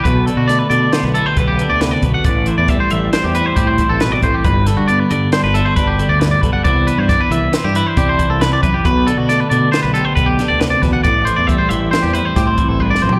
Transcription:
<<
  \new Staff \with { instrumentName = "Clean electric guitar" } { \time 5/4 \key g \major \tempo 4 = 136 b'8 a'16 fis'16 d''16 b'16 d''8 c''16 b'16 a'16 c''16 b'16 g'8 d''16 b'16 d''16 b'16 fis''16 | d''8 c''16 d''16 e''16 c''16 e''8 c''16 g'16 b'16 c''16 g'16 c''8 a'16 b'16 d''16 c''16 g'16 | b'8 a'16 fis'16 d''16 b'16 d''8 c''16 b'16 a'16 c''16 b'16 g'8 d''16 b'16 d''16 b'16 fis''16 | d''8 b'16 c''16 d''16 b'16 e''8 c''16 g'16 b'16 c''16 g'16 c''8 a'16 b'16 d''16 b'16 g'16 |
b'8 a'16 fis'16 d''16 b'16 d''8 c''16 b'16 a'16 c''16 b'16 g'8 d''16 b'16 d''16 b'16 fis''16 | d''8 c''16 d''16 e''16 c''16 e''8 c''16 g'16 b'16 c''16 g'16 c''8 a'16 b'16 d''16 c''16 g'16 | }
  \new Staff \with { instrumentName = "Clean electric guitar" } { \clef bass \time 5/4 \key g \major << { r4 a4 b8 e'16 g'16 b2 | r4 g4 c'8 e'8 c'2 | r4 b4 d'8 e'16 fis'16 d'2 | <e b d' e'>4 b4 b16 d'16 e'8 d'2 |
r4 a4 b8 g'8 b2 | r4 g4 c'8 e'8 c'2 | } \\ { b,8 d4 d2 d8 c8 b,8 | a,8 e4 e2 e8 b,8 a,8 | g,8 d4 d2 d8 g,8 d8 | c8 e4 e2 e8 c8 e8 |
b,8 d4 d2 d8 c8 b,8 | a,8 e4 e2 e8 g,8 fis,8 | } >> }
  \new Staff \with { instrumentName = "Fingered electric bass" } { \clef bass \time 5/4 \key g \major b,,8. b,8. b,8 r16 b,,8 r16 b,,8. d,8. b,,16 r16 | a,,8. e,8 r16 a,,8 r16 e,8 r16 a,8. a,,8. a,,16 r16 | g,,8. g,8. g,8 r16 g,,8 r16 g,,8. d,8. b,,16 r16 | c,8. g,8 r16 c,8 r16 g,8 r16 c8. c,8. fis,16 r16 |
b,,8. b,8. b,8 r16 b,,8 r16 b,,8. d,8. e,16 r16 | a,,8. e,8 r16 a,,8 r16 e,8 r16 a,8. a,,8. a,,16 r16 | }
  \new DrumStaff \with { instrumentName = "Drums" } \drummode { \time 5/4 <hh bd>8 hh8 <hh sn>8 hh8 <hh sn>8 hh8 <hh bd>8 hh8 <hh sn>8 <hh bd>8 | <hh bd>8 hh8 <hh bd>8 hh8 <hh sn>8 hh8 <hh bd>8 <hh bd>8 <hh sn>8 <hh bd>8 | <hh bd>8 <hh sn>8 hh8 hh8 <hh sn>8 hh8 <hh bd>8 hh8 <hh sn>8 <hh bd>8 | <hh bd>8 hh8 <hh bd sn>8 hh8 <hh sn>8 hh8 <hh bd>8 <hh bd>8 <hh sn>8 <hh bd>8 |
<hh bd>8 hh8 <hh sn>8 hh8 <hh sn>8 hh8 <hh bd>8 <hh sn>8 <hh sn>8 <hh bd sn>8 | <hh bd>8 hh8 <hh bd>8 hh8 <hh sn>8 hh8 <hh bd sn>8 <hh bd>8 \tuplet 3/2 { bd8 sn8 tomfh8 } | }
>>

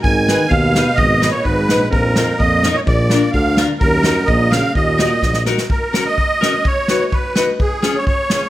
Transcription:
<<
  \new Staff \with { instrumentName = "Accordion" } { \time 2/4 \key ees \minor \tempo 4 = 127 aes''4 f''4 | ees''8. des''16 ces''4 | bes'4 ees''8. des''16 | d''4 f''8. r16 |
bes'4 ees''8 f''8 | ees''4. r8 | \key fis \major ais'8. dis''4~ dis''16 | cis''4 b'8. r16 |
gis'8. cis''16 cis''4 | }
  \new Staff \with { instrumentName = "Steel-string acoustic guitar" } { \time 2/4 \key ees \minor r8 <ees' aes' ces''>8 r8 <ees' aes' ces''>8 | r8 <ees' aes' ces''>8 r8 <ees' aes' ces''>8 | r8 <ees' f' bes'>8 r8 <ees' f' bes'>8 | r8 <d' f' bes'>8 r8 <d' f' bes'>8 |
r8 <ees' ges' bes'>8 r8 <ees' ges' bes'>8 | r8 <ees' ges' bes'>8 r8 <ees' ges' bes'>8 | \key fis \major r8 <cis' fis' ais'>8 r8 <cis' fis' ais'>8 | r8 <dis' fis' b'>8 r8 <dis' fis' b'>8 |
r8 <cis' eis' gis'>8 r8 <cis' eis' gis'>8 | }
  \new Staff \with { instrumentName = "Euphonium" } { \clef bass \time 2/4 \key ees \minor ees4 ces4 | ces8. bes,16 aes,4 | f,4 bes,8. bes,16 | bes,4 d8. r16 |
ges,4 bes,8 des8 | bes,4. r8 | \key fis \major r2 | r2 |
r2 | }
  \new Staff \with { instrumentName = "Tuba" } { \clef bass \time 2/4 \key ees \minor aes,,4 ees,4 | aes,,4 aes,,8 bes,,8 | bes,,4 f,4 | bes,,4 d,4 |
ees,4 bes,,4 | ees,4 bes,,4 | \key fis \major r2 | r2 |
r2 | }
  \new DrumStaff \with { instrumentName = "Drums" } \drummode { \time 2/4 bd8 sn8 bd8 sn8 | bd8 sn8 bd8 sn8 | bd8 sn8 bd8 sn8 | bd8 sn8 bd8 sn8 |
bd8 sn8 bd8 sn8 | bd8 sn8 <bd sn>16 sn16 sn16 sn16 | bd8 sn8 bd8 sn8 | bd8 sn8 bd8 sn8 |
bd8 sn8 bd8 sn8 | }
>>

